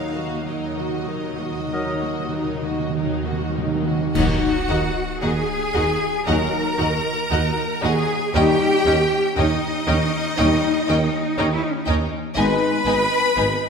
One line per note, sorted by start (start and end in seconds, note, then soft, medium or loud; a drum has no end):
0.00 0.32 D#2 medium
0.00 0.33 D#3 medium
0.00 0.07 D#3 soft
0.00 0.15 F#3 soft
0.00 3.81 F#3 soft
0.00 0.15 D#4 soft
0.00 0.16 D#4 soft
0.00 3.81 D#4 medium
0.00 0.15 A#4 soft
0.00 0.44 F5 medium
0.08 0.16 D#3 soft
0.14 0.25 D#3 soft
0.14 0.47 A#3 soft
0.14 0.46 F#4 soft
0.14 0.47 F#4 soft
0.14 0.46 D#5 soft
0.26 0.34 D#3 soft
0.36 0.43 D#3 soft
0.45 1.59 D#2 medium
0.45 0.52 D#3 soft
0.45 1.59 D#3 soft
0.45 0.76 F#3 soft
0.45 0.76 D#4 soft
0.45 0.76 A#4 soft
0.45 3.57 D#5 medium
0.62 0.70 D#3 soft
0.71 0.80 D#3 soft
0.77 0.88 D#3 soft
0.77 1.10 A#3 soft
0.77 1.10 F#4 soft
0.77 1.10 D#5 soft
0.89 0.97 D#3 soft
0.98 1.05 D#3 soft
1.07 1.14 D#3 soft
1.07 1.41 F#3 soft
1.07 1.41 D#4 soft
1.07 1.41 A#4 soft
1.16 1.23 D#3 soft
1.24 1.32 D#3 soft
1.33 1.40 D#3 soft
1.40 1.49 D#3 soft
1.40 1.72 A#3 soft
1.40 1.72 F#4 soft
1.40 1.73 D#5 soft
1.51 1.59 D#3 soft
1.60 1.66 D#3 soft
1.68 1.75 D#3 soft
1.68 2.01 F#3 soft
1.68 2.01 D#4 soft
1.68 2.01 A#4 soft
1.72 2.82 D#2 medium
1.72 2.82 D#3 soft
1.72 2.23 F#3 soft
1.72 2.02 D#4 soft
1.72 2.23 A#4 soft
1.72 2.31 D#6 soft
1.76 1.84 D#3 soft
1.85 1.92 D#3 soft
1.94 2.01 D#3 soft
2.02 2.10 D#3 soft
2.02 2.34 A#3 soft
2.02 2.34 F#4 soft
2.02 2.35 F#4 soft
2.02 2.35 D#5 soft
2.11 2.18 D#3 soft
2.20 2.27 D#3 medium
2.28 2.36 D#3 medium
2.33 2.65 F#3 soft
2.33 2.65 D#4 soft
2.33 2.66 A#4 soft
2.37 2.43 D#3 medium
2.45 2.53 D#3 medium
2.54 2.61 D#3 medium
2.62 2.70 D#3 medium
2.62 2.96 A#3 soft
2.62 2.96 F#4 soft
2.62 2.96 D#5 soft
2.71 2.78 D#3 medium
2.80 2.88 D#3 medium
2.89 2.96 D#3 medium
2.96 4.02 D#2 soft
2.96 4.02 D#3 medium
2.96 3.05 D#3 medium
2.96 3.24 F#3 soft
2.96 3.24 D#4 soft
2.96 3.24 A#4 soft
3.07 3.14 D#3 medium
3.15 3.22 D#3 medium
3.23 3.31 D#3 medium
3.23 3.57 A#3 soft
3.23 3.57 F#4 soft
3.23 3.57 D#5 soft
3.32 3.40 D#3 medium
3.41 3.49 D#3 medium
3.50 3.57 D#3 medium
3.57 3.65 D#3 medium
3.57 3.87 F#3 soft
3.57 3.87 D#4 soft
3.57 3.87 A#4 soft
3.66 3.73 D#3 medium
3.74 3.81 D#3 medium
3.82 3.90 D#3 medium
3.82 4.14 F#4 soft
3.82 4.12 D#5 soft
3.87 4.15 A#3 soft
3.87 4.14 F#4 soft
3.91 3.98 D#3 medium
3.99 4.05 D#3 medium
4.07 4.14 D#3 medium
4.14 4.23 D#2 medium
4.14 4.36 D#2 medium
4.14 4.57 F#3 medium
4.14 4.57 D#4 medium
4.14 4.23 D#4 medium
4.14 4.23 F#4 medium
4.14 5.19 F#4 loud
4.14 4.22 D#5 medium
4.14 4.22 F#5 medium
4.14 5.18 F#5 medium
4.14 concert bass drum medium
4.14 crash medium
4.68 4.77 D#2 medium
4.68 4.90 D#2 medium
4.68 4.78 D#4 medium
4.68 4.78 F#4 medium
4.68 4.76 D#5 medium
4.68 4.77 F#5 medium
5.22 5.30 D#2 medium
5.22 5.44 D#2 medium
5.22 5.31 D#4 medium
5.22 5.31 F#4 medium
5.22 6.27 G#4 loud
5.22 5.30 D#5 medium
5.22 5.30 F#5 medium
5.22 6.25 G#5 loud
5.74 5.96 D#2 medium
5.74 5.83 D#2 medium
5.74 5.82 D#4 medium
5.74 5.82 F#4 medium
5.74 5.82 D#5 medium
5.74 5.82 F#5 medium
6.26 6.48 D#2 medium
6.26 6.36 D#2 medium
6.26 6.67 F#3 medium
6.26 6.34 D#4 medium
6.26 6.68 D#4 medium
6.26 6.35 F#4 medium
6.26 7.80 A#4 loud
6.26 6.35 D#5 medium
6.26 6.35 F#5 medium
6.26 7.80 A#5 loud
6.77 7.00 D#2 medium
6.77 6.87 D#2 medium
6.77 6.85 D#4 medium
6.77 6.86 F#4 medium
6.77 6.88 D#5 medium
6.77 6.87 F#5 medium
7.30 7.52 D#2 medium
7.30 7.39 D#2 medium
7.30 7.38 D#4 medium
7.30 7.38 F#4 medium
7.30 7.40 D#5 medium
7.30 7.40 F#5 medium
7.82 8.04 D#2 medium
7.82 7.92 D#2 medium
7.82 7.90 D#4 medium
7.82 7.90 F#4 medium
7.82 8.35 G#4 loud
7.82 7.92 D#5 medium
7.82 7.92 F#5 medium
7.82 8.34 G#5 loud
8.33 8.42 D#2 loud
8.33 8.55 D#2 medium
8.33 8.75 G3 medium
8.33 8.41 C#4 medium
8.33 8.42 D#4 medium
8.33 8.75 D#4 medium
8.33 9.35 G4 loud
8.33 8.43 D#5 medium
8.33 9.36 G5 loud
8.33 8.44 G5 medium
8.85 8.93 D#2 medium
8.85 9.06 D#2 medium
8.85 8.93 C#4 medium
8.85 8.93 D#4 medium
8.85 8.95 D#5 medium
8.85 8.95 G5 medium
9.36 9.57 D#2 medium
9.36 9.45 D#2 medium
9.36 9.45 C#4 medium
9.36 9.44 D#4 medium
9.36 11.50 D#4 loud
9.36 9.45 D#5 medium
9.36 11.84 D#5 loud
9.36 9.45 G5 medium
9.87 10.08 D#2 medium
9.87 9.96 D#2 medium
9.87 9.95 C#4 medium
9.87 9.95 D#4 medium
9.87 9.96 D#5 medium
9.87 9.96 G5 medium
10.37 10.58 D#2 medium
10.37 10.47 D#2 loud
10.37 10.77 G3 medium
10.37 10.46 C#4 medium
10.37 10.46 D#4 medium
10.37 10.78 D#4 medium
10.37 10.46 D#5 medium
10.37 10.45 G5 medium
10.88 11.08 D#2 loud
10.88 10.97 D#2 medium
10.88 10.96 C#4 medium
10.88 10.96 D#4 medium
10.88 10.96 D#5 medium
10.88 10.97 G5 medium
11.38 11.58 D#2 medium
11.38 11.47 D#2 medium
11.38 11.46 C#4 medium
11.38 11.46 D#4 medium
11.38 11.47 D#5 medium
11.38 11.46 G5 medium
11.54 11.62 E4 loud
11.62 11.71 D#4 loud
11.70 11.79 C#4 medium
11.79 11.88 D#4 medium
11.87 12.08 D#2 medium
11.87 11.96 D#2 medium
11.87 11.96 C#4 medium
11.87 11.96 D#4 medium
11.87 11.95 D#5 medium
11.87 11.95 G5 medium
12.35 12.57 G#1 medium
12.35 12.45 G#1 loud
12.35 12.75 G#3 medium
12.35 12.45 B3 medium
12.35 12.75 D#4 medium
12.35 12.45 D#4 medium
12.35 13.69 B4 loud
12.35 12.43 D#5 medium
12.35 12.44 G#5 medium
12.35 13.69 B5 loud
12.86 12.94 G#1 medium
12.86 13.07 G#1 medium
12.86 12.95 B3 medium
12.86 12.94 D#4 medium
12.86 12.94 D#5 medium
12.86 12.94 G#5 medium
13.36 13.57 G#1 medium
13.36 13.45 G#1 medium
13.36 13.45 B3 medium
13.36 13.44 D#4 medium
13.36 13.45 D#5 medium
13.36 13.45 G#5 medium